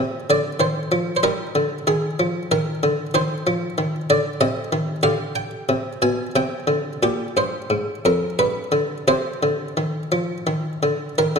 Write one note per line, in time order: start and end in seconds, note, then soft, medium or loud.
0.00 0.20 C3 medium
0.00 1.19 D#4 soft
0.00 0.19 D#5 medium
0.30 0.52 D3 medium
0.30 0.61 D5 medium
0.60 0.82 D#3 medium
0.60 1.15 C5 medium
0.92 1.14 F3 medium
1.16 1.23 C5 medium
1.23 1.46 G3 medium
1.23 3.10 D#4 soft
1.23 1.78 A#4 medium
1.55 1.78 D3 medium
1.87 2.10 D#3 medium
1.87 2.51 G#4 medium
2.20 2.42 F3 medium
2.51 2.74 D#3 medium
2.51 3.15 A#4 medium
2.83 3.06 D3 medium
3.14 3.37 D#3 medium
3.14 5.01 D#4 soft
3.14 3.95 C5 loud
3.47 3.69 F3 medium
3.78 4.01 D#3 medium
4.10 4.33 D3 medium
4.10 4.41 D5 medium
4.41 4.64 C3 medium
4.41 5.04 D#5 medium
4.72 4.95 D#3 medium
5.03 5.50 D3 medium
5.03 6.31 G4 soft
5.03 5.36 F5 loud
5.36 5.92 G5 medium
5.69 5.93 C3 medium
6.02 6.26 B2 medium
6.02 6.35 G#5 medium
6.36 6.59 C3 medium
6.36 6.93 G5 loud
6.67 6.92 D3 medium
7.03 7.27 A#2 medium
7.03 7.37 G4 medium
7.37 7.61 G2 medium
7.37 8.05 C5 medium
7.70 7.95 G#2 medium
8.05 8.29 F2 medium
8.05 8.39 A#4 medium
8.39 8.63 G2 medium
8.39 8.97 B4 medium
8.72 8.97 D3 medium
9.08 9.33 C3 medium
9.08 11.15 G4 soft
9.08 10.83 C5 medium
9.43 9.68 D3 medium
9.77 10.02 D#3 medium
10.12 10.37 F3 soft
10.47 10.72 D#3 medium
10.83 11.09 D3 soft
11.18 11.35 D#3 medium
11.18 11.39 A#4 medium
11.36 11.39 D3 medium